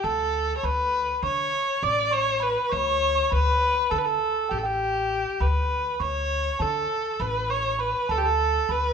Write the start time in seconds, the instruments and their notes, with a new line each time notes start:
0.04 upright bass D2, kamancheh A4, celesta A5
0.57 kamancheh C#5
0.63 upright bass D2, kamancheh B4, celesta B5
1.23 upright bass D3, kamancheh C#5, celesta C#6
1.83 upright bass A1, kamancheh D5, celesta D6
2.11 kamancheh C#5, celesta C#6
2.40 kamancheh B4, celesta B5
2.69 upright bass D2, kamancheh C#5, celesta C#6
2.77 celesta B5
2.84 celesta C#6
3.15 celesta C#6
3.31 upright bass D2, kamancheh B4, celesta B5
3.75 celesta B5
3.90 upright bass D3, kamancheh A4, celesta A5
3.98 kamancheh B4
4.04 kamancheh A4, celesta A5
4.49 upright bass A1, kamancheh G4, celesta G5
4.58 kamancheh A4
4.63 kamancheh G4, celesta G5
5.40 upright bass D2, kamancheh B4, celesta B5
6.00 upright bass D2, kamancheh C#5, celesta C#6
6.59 upright bass D3, kamancheh A4, celesta A5
7.20 upright bass A1, kamancheh B4, celesta B5
7.50 kamancheh C#5, celesta C#6
7.79 kamancheh B4, celesta B5
8.09 upright bass D2, kamancheh A4, celesta A5
8.18 kamancheh G4
8.23 kamancheh A4, celesta A5
8.69 upright bass D2, kamancheh B4, celesta B5